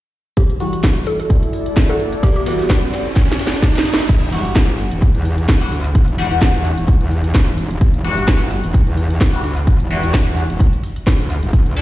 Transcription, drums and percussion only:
0.37 kick, closed hi-hat
0.50 closed hi-hat
0.60 open hi-hat
0.73 closed hi-hat
0.84 kick, snare, closed hi-hat
0.96 closed hi-hat
1.07 open hi-hat
1.19 closed hi-hat
1.30 kick, closed hi-hat
1.43 closed hi-hat
1.53 open hi-hat
1.66 closed hi-hat
1.77 kick, snare, closed hi-hat
1.89 closed hi-hat
2.00 open hi-hat
2.13 closed hi-hat
2.23 kick, closed hi-hat, ride
2.36 closed hi-hat
2.46 open hi-hat, ride
2.59 snare, closed hi-hat
2.69 kick, snare, closed hi-hat, ride
2.82 closed hi-hat
2.93 open hi-hat, ride
3.06 closed hi-hat
3.16 kick, snare, closed hi-hat, ride
3.29 snare, closed hi-hat
3.39 snare, open hi-hat, ride
3.47 snare
3.52 snare, closed hi-hat, ride
3.62 kick, snare, closed hi-hat, ride
3.75 snare, closed hi-hat, ride
3.78 snare
3.85 snare, open hi-hat, ride
3.94 snare
3.98 snare, closed hi-hat, ride
4.09 kick, closed hi-hat, crash
4.22 closed hi-hat
4.32 open hi-hat
4.45 closed hi-hat
4.56 kick, snare, closed hi-hat
4.68 closed hi-hat
4.79 open hi-hat
4.91 closed hi-hat
5.02 kick, closed hi-hat
5.15 closed hi-hat
5.25 open hi-hat
5.38 closed hi-hat
5.49 kick, snare, closed hi-hat
5.61 closed hi-hat
5.72 open hi-hat
5.84 closed hi-hat
5.95 kick, closed hi-hat
6.08 closed hi-hat
6.18 open hi-hat
6.31 closed hi-hat
6.42 kick, snare, closed hi-hat
6.54 closed hi-hat
6.65 open hi-hat
6.77 closed hi-hat
6.88 kick, closed hi-hat
7.01 closed hi-hat
7.11 open hi-hat
7.24 closed hi-hat
7.34 kick, snare, closed hi-hat
7.47 closed hi-hat
7.58 open hi-hat
7.71 closed hi-hat
7.81 kick, closed hi-hat
7.94 closed hi-hat
8.04 open hi-hat
8.17 closed hi-hat
8.28 kick, snare, closed hi-hat
8.40 closed hi-hat
8.51 open hi-hat
8.64 closed hi-hat
8.74 kick, closed hi-hat
8.87 closed hi-hat
8.97 open hi-hat
9.10 closed hi-hat
9.21 kick, snare, closed hi-hat
9.34 closed hi-hat
9.44 open hi-hat
9.57 closed hi-hat
9.67 kick, closed hi-hat
9.80 closed hi-hat
9.91 open hi-hat
10.03 closed hi-hat
10.14 kick, snare, closed hi-hat
10.27 closed hi-hat
10.37 open hi-hat
10.50 closed hi-hat
10.60 kick, closed hi-hat
10.73 closed hi-hat
10.84 open hi-hat
10.96 closed hi-hat
11.07 kick, snare, closed hi-hat
11.19 closed hi-hat
11.30 open hi-hat
11.43 closed hi-hat
11.53 kick, closed hi-hat
11.66 closed hi-hat
11.77 open hi-hat

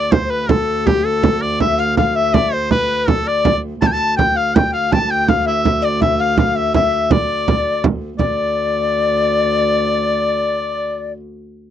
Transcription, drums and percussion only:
0.12 frame drum
0.49 frame drum
0.87 frame drum
1.23 frame drum
1.60 frame drum
1.97 frame drum
2.34 frame drum
2.71 frame drum
2.90 frame drum
3.08 frame drum
3.45 frame drum
3.82 frame drum
4.01 frame drum
4.19 frame drum
4.56 frame drum
4.92 frame drum
5.28 frame drum
5.65 frame drum
6.02 frame drum
6.20 frame drum
6.37 frame drum
6.74 frame drum
7.11 frame drum
7.48 frame drum
7.66 frame drum
7.84 frame drum
8.02 frame drum
8.19 frame drum

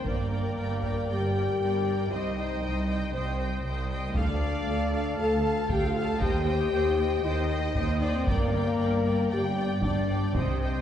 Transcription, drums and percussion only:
0.05 taiko
0.83 taiko
4.15 taiko
5.69 taiko
6.21 taiko
7.75 taiko
8.27 taiko
9.82 taiko
10.35 taiko

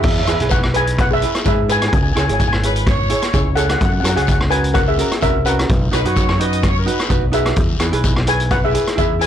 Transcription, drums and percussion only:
0.03 kick, crash, long guiro
0.26 cross-stick, closed hi-hat, short guiro
0.40 closed hi-hat
0.49 kick, closed hi-hat, short guiro
0.63 cross-stick
0.74 closed hi-hat
0.87 closed hi-hat
0.97 kick, cross-stick, closed hi-hat, long guiro
1.22 closed hi-hat
1.35 cross-stick, closed hi-hat
1.44 kick, closed hi-hat, short guiro
1.69 closed hi-hat, short guiro
1.82 cross-stick, closed hi-hat
1.93 kick, closed hi-hat, long guiro
2.16 cross-stick, closed hi-hat, short guiro
2.29 closed hi-hat
2.40 kick, closed hi-hat, short guiro
2.53 cross-stick
2.63 closed hi-hat
2.76 closed hi-hat
2.87 kick, cross-stick, closed hi-hat, long guiro
3.10 closed hi-hat
3.22 cross-stick, closed hi-hat
3.33 kick, closed hi-hat, short guiro
3.57 closed hi-hat, short guiro
3.69 cross-stick, closed hi-hat
3.81 kick, closed hi-hat, long guiro
4.04 cross-stick, closed hi-hat, short guiro
4.17 closed hi-hat
4.27 kick, closed hi-hat, short guiro
4.41 cross-stick
4.51 closed hi-hat
4.64 closed hi-hat
4.74 kick, cross-stick, closed hi-hat, long guiro
4.99 closed hi-hat
5.12 cross-stick, closed hi-hat
5.21 kick, closed hi-hat, short guiro
5.45 closed hi-hat, short guiro
5.59 cross-stick, closed hi-hat
5.70 kick, closed hi-hat, long guiro
5.93 cross-stick, closed hi-hat, short guiro
6.05 closed hi-hat
6.16 kick, closed hi-hat, short guiro
6.29 cross-stick
6.41 closed hi-hat
6.53 closed hi-hat
6.62 kick, cross-stick, closed hi-hat, long guiro
6.87 closed hi-hat
7.00 cross-stick, closed hi-hat
7.10 kick, closed hi-hat, short guiro
7.33 closed hi-hat, short guiro
7.46 cross-stick, closed hi-hat
7.56 kick, closed hi-hat, long guiro
7.80 cross-stick, closed hi-hat, short guiro
7.93 closed hi-hat
8.04 kick, closed hi-hat, short guiro
8.16 cross-stick
8.27 closed hi-hat
8.40 closed hi-hat
8.51 kick, cross-stick, closed hi-hat, long guiro
8.75 closed hi-hat
8.87 cross-stick, closed hi-hat
8.98 kick, closed hi-hat, short guiro
9.21 closed hi-hat, short guiro

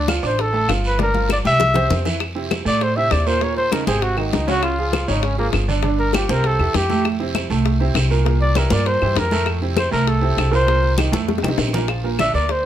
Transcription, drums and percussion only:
0.08 high bongo, high conga, short guiro, claves
0.23 short guiro
0.38 high bongo, high conga, long guiro
0.54 high conga
0.69 high bongo, low bongo, high conga, short guiro, claves
0.84 high conga, short guiro
0.99 high bongo, high conga, long guiro
1.14 high bongo, high conga
1.29 high bongo, high conga, short guiro, claves
1.45 high conga, short guiro
1.60 high bongo, low conga, long guiro
1.74 high bongo, low conga, claves
1.90 low bongo, low conga, short guiro
2.05 low bongo, low conga, short guiro
2.20 high bongo, high conga, long guiro, claves
2.36 high conga
2.51 high bongo, high conga, short guiro, claves
2.66 short guiro
2.81 high bongo, high conga, long guiro
2.97 high conga
3.11 high bongo, low bongo, high conga, short guiro, claves
3.27 high conga, short guiro
3.41 high bongo, high conga, long guiro
3.56 high bongo, high conga
3.72 high bongo, high conga, short guiro, claves
3.87 high conga, short guiro
4.02 high bongo, high conga, long guiro
4.17 high bongo, high conga, claves
4.32 high bongo, low bongo, high conga, short guiro
4.48 high bongo, high conga, short guiro
4.63 high bongo, high conga, long guiro, claves
4.79 high conga
4.93 high bongo, high conga, short guiro, claves
5.08 short guiro
5.23 high bongo, high conga, long guiro
5.38 high conga
5.53 high bongo, low bongo, high conga, short guiro, claves
5.69 high conga, short guiro
5.83 high bongo, high conga, long guiro
5.99 high bongo, high conga
6.13 high bongo, high conga, short guiro, claves
6.29 high conga, short guiro
6.44 high bongo, high conga, long guiro
6.59 high bongo, high conga, claves
6.74 high bongo, low bongo, high conga, short guiro
6.90 high bongo, high conga, short guiro
7.05 high bongo, high conga, long guiro, claves
7.20 high conga
7.35 high bongo, high conga, short guiro, claves
7.50 short guiro
7.65 high bongo, high conga, long guiro
7.81 high conga
7.95 high bongo, low bongo, high conga, short guiro, claves
8.10 high conga, short guiro
8.25 high bongo, high conga, long guiro
8.41 high bongo, high conga
8.55 high bongo, high conga, short guiro, claves
8.70 high conga, short guiro
8.86 high bongo, high conga, long guiro
9.01 high bongo, high conga, claves
9.16 high bongo, low bongo, high conga, short guiro
9.31 high bongo, high conga, short guiro
9.46 high bongo, high conga, long guiro, claves
9.62 high conga
9.77 high bongo, high conga, short guiro, claves
9.93 short guiro
10.07 high bongo, high conga
10.22 high conga
10.38 high bongo, low bongo, high conga, short guiro, claves
10.53 high conga, short guiro
10.68 high bongo, high conga, long guiro
10.83 high bongo, high conga
10.98 high bongo, high conga, short guiro, claves
11.13 high conga, short guiro
11.29 high bongo, high conga, long guiro
11.38 high bongo
11.44 high conga, claves
11.48 low bongo
11.58 low bongo, short guiro
11.69 low bongo
11.74 low conga, short guiro
11.78 low bongo
11.88 high bongo, high conga, long guiro, claves
12.05 high conga
12.19 high bongo, high conga, short guiro, claves
12.35 high conga, short guiro
12.49 high bongo, high conga, long guiro

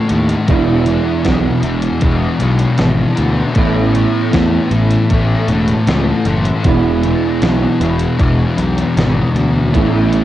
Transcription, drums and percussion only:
0.09 closed hi-hat
0.29 closed hi-hat
0.48 kick, closed hi-hat
0.86 closed hi-hat
1.25 kick, snare, closed hi-hat
1.63 closed hi-hat
1.82 closed hi-hat
2.01 kick, closed hi-hat
2.40 closed hi-hat
2.59 closed hi-hat
2.78 snare, closed hi-hat
3.17 closed hi-hat
3.55 kick, closed hi-hat
3.95 closed hi-hat
4.33 kick, snare, closed hi-hat
4.71 closed hi-hat
4.91 closed hi-hat
5.10 kick, closed hi-hat
5.48 closed hi-hat
5.68 closed hi-hat
5.87 snare, closed hi-hat
6.25 closed hi-hat
6.45 closed hi-hat
6.64 kick, closed hi-hat
7.04 closed hi-hat
7.42 snare, closed hi-hat
7.81 closed hi-hat
8.00 closed hi-hat
8.19 kick, closed hi-hat
8.58 closed hi-hat
8.78 closed hi-hat
8.97 snare, closed hi-hat
9.36 closed hi-hat
9.74 kick, closed hi-hat
10.12 closed hi-hat

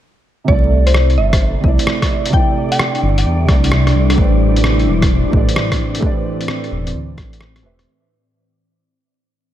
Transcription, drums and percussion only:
0.48 kick
0.87 closed hi-hat
0.94 cross-stick
1.10 closed hi-hat
1.33 kick, cross-stick, closed hi-hat
1.64 kick
1.79 closed hi-hat
1.87 cross-stick
2.02 kick, cross-stick, closed hi-hat
2.26 closed hi-hat
2.33 kick
2.72 closed hi-hat
2.79 cross-stick
2.95 closed hi-hat
3.18 closed hi-hat
3.49 kick, cross-stick, closed hi-hat
3.64 closed hi-hat
3.72 cross-stick
3.87 cross-stick, closed hi-hat
4.10 cross-stick, closed hi-hat
4.18 kick
4.56 closed hi-hat
4.64 cross-stick
4.79 closed hi-hat
5.02 kick, cross-stick, closed hi-hat
5.33 kick
5.49 closed hi-hat
5.56 cross-stick
5.72 kick, cross-stick, closed hi-hat
5.95 closed hi-hat
6.02 kick
6.41 closed hi-hat
6.48 cross-stick
6.64 closed hi-hat
6.87 closed hi-hat
7.18 kick, cross-stick, closed hi-hat
7.33 closed hi-hat
7.41 cross-stick
7.56 cross-stick, closed hi-hat
7.79 cross-stick, closed hi-hat

